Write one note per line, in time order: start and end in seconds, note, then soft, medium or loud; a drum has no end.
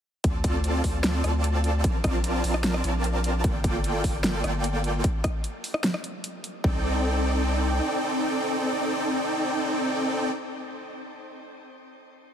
0.24 0.82 D2 medium
0.24 0.82 C4 loud
0.24 0.82 F4 medium
0.24 0.82 A4 medium
0.24 0.82 D5 medium
0.24 0.82 A5 loud
0.24 kick loud
0.24 closed hi-hat medium
0.44 kick loud
0.44 closed hi-hat medium
0.64 closed hi-hat medium
0.84 1.22 D2 medium
0.84 1.22 C4 medium
0.84 1.22 F4 medium
0.84 1.22 A4 medium
0.84 1.22 D5 medium
0.84 1.22 A5 medium
0.84 kick medium
0.84 open hi-hat medium
1.04 snare loud
1.04 closed hi-hat medium
1.24 1.86 D2 loud
1.24 1.82 C4 loud
1.24 1.82 F4 medium
1.24 1.82 A4 medium
1.24 1.82 D5 medium
1.24 1.82 A5 loud
1.24 cross-stick medium
1.24 closed hi-hat medium
1.44 closed hi-hat medium
1.64 closed hi-hat medium
1.84 2.42 A#1 medium
1.84 2.42 C4 loud
1.84 2.42 F4 medium
1.84 2.42 A#4 medium
1.84 2.42 D5 medium
1.84 2.42 A5 loud
1.84 kick loud
1.84 closed hi-hat medium
2.04 kick loud
2.04 cross-stick medium
2.04 closed hi-hat medium
2.24 closed hi-hat medium
2.44 2.82 A#1 loud
2.44 2.82 C4 medium
2.44 2.82 F4 medium
2.44 2.82 A#4 medium
2.44 2.82 D5 medium
2.44 2.82 A5 medium
2.44 open hi-hat medium
2.54 cross-stick medium
2.64 snare loud
2.64 closed hi-hat medium
2.74 cross-stick medium
2.84 3.46 A#1 loud
2.84 3.42 C4 medium
2.84 3.42 F4 medium
2.84 3.42 A#4 medium
2.84 3.42 D5 medium
2.84 3.42 A5 loud
2.84 closed hi-hat medium
3.04 closed hi-hat medium
3.24 closed hi-hat medium
3.44 4.02 G1 medium
3.44 4.02 A#3 loud
3.44 4.02 F4 medium
3.44 4.02 A4 medium
3.44 4.02 D5 medium
3.44 4.02 G5 loud
3.44 kick loud
3.44 closed hi-hat medium
3.64 kick loud
3.64 closed hi-hat medium
3.84 closed hi-hat medium
4.04 4.42 G1 loud
4.04 4.42 A#3 medium
4.04 4.42 F4 medium
4.04 4.42 A4 medium
4.04 4.42 D5 medium
4.04 4.42 G5 medium
4.04 kick medium
4.04 open hi-hat medium
4.24 snare loud
4.24 closed hi-hat medium
4.44 5.02 G1 loud
4.44 5.02 A#3 medium
4.44 5.02 F4 medium
4.44 5.02 A4 medium
4.44 5.02 D5 medium
4.44 5.02 G5 loud
4.44 cross-stick medium
4.44 closed hi-hat medium
4.64 closed hi-hat medium
4.84 closed hi-hat medium
5.04 kick loud
5.04 closed hi-hat medium
5.24 kick loud
5.24 cross-stick medium
5.24 closed hi-hat medium
5.44 closed hi-hat medium
5.64 open hi-hat medium
5.74 cross-stick medium
5.84 snare loud
5.84 closed hi-hat medium
5.94 cross-stick medium
6.04 closed hi-hat medium
6.24 closed hi-hat medium
6.44 closed hi-hat medium
6.64 7.80 C2 medium
6.64 10.30 C4 medium
6.64 10.30 D#4 medium
6.64 10.30 A4 medium
6.64 10.30 D5 medium
6.64 10.30 G5 medium
6.64 kick loud